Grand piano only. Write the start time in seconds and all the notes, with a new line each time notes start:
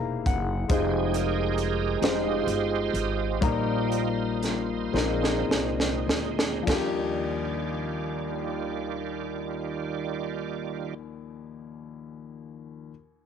Already playing: C3 A#3 D#4 E4 G#4 A#4 C5 A#5
0.27 F#5
0.68 G#3 D#4 F4 C5
2.01 G#3 D#4 F4 C5
3.41 A#2 G3 A#3 D#4 A#4
4.93 A#2 G#3 C4 D#4 A#4
6.63 F3 D4
6.68 D#2 D#4
6.72 G4